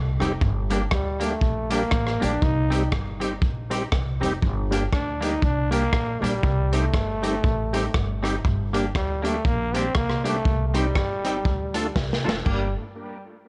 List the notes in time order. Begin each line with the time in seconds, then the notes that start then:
Already playing: C2 A3
0.20 F1 G3 C4 D#4 G4, cross-stick, closed hi-hat
0.41 G1, kick
0.70 G3 A#3 D4 G4, closed hi-hat
0.91 D2 G3, kick, cross-stick
1.20 G3 A3 A#3 D4 G4, closed hi-hat
1.41 A#1, kick
1.70 G3 A#3 D4 G4, closed hi-hat
1.91 A1, kick, cross-stick
2.06 cross-stick
2.20 A#1 G3 A#3 D4 G4, closed hi-hat
2.24 D4
2.42 C2 D#4, kick
2.70 G3 C4 D#4 G4, closed hi-hat
2.92 G1, kick, cross-stick
3.20 G3 C4 D#4 G4, closed hi-hat
3.42 A#1, kick
3.70 G3 C4 D#4 G4, closed hi-hat
3.92 C2, kick, cross-stick
4.20 F1 G3 C4 D#4 G4, closed hi-hat
4.43 G1, kick
4.70 G3 A#3 D4 G4, closed hi-hat
4.93 D2 D4, muted clean electric guitar stroke, kick, cross-stick
5.21 G3 A#3 D4 D#4 G4, closed hi-hat
5.42 C2 D4, kick
5.71 G3 A#3 D4 G4, closed hi-hat
5.93 A#1, kick, cross-stick
6.21 A#1 G3 A#3 D4 G4, closed hi-hat
6.43 C2, kick
6.72 G3 A3 C4 D#4 G4, closed hi-hat
6.93 G1, muted clean electric guitar stroke, kick, cross-stick
7.22 G3 C4 D#4 G4, closed hi-hat
7.44 A1, kick
7.73 G3 C4 D#4 G4, closed hi-hat
7.94 G1, kick, cross-stick
8.22 G3 C4 D#4 G4, cross-stick, closed hi-hat
8.45 G1, kick
8.73 G3 A#3 D4 G4, closed hi-hat
8.95 D2 G3, muted clean electric guitar stroke, kick, cross-stick
9.22 G3 A3 A#3 D4 G4, closed hi-hat
9.45 A#1 A#3, kick
9.73 G3 A#3 C4 D4 G4, closed hi-hat
9.95 C2 A#3, kick, cross-stick
10.10 cross-stick
10.23 G3 A3 A#3 D4 G4, closed hi-hat
10.45 C2, kick
10.68 A3
10.74 G3 C4 D#4 G4, closed hi-hat
10.95 G1, muted clean electric guitar stroke, kick, cross-stick
11.24 G3 C4 D#4 G4, closed hi-hat
11.45 D2, kick
11.74 A3 D4 F4 A4, closed hi-hat
11.96 C2, kick, snare
12.13 snare
12.25 F1 A3 D4 F4 A4
12.29 snare
12.45 G1 G3 A#3 D4 G4 A#4, kick, crash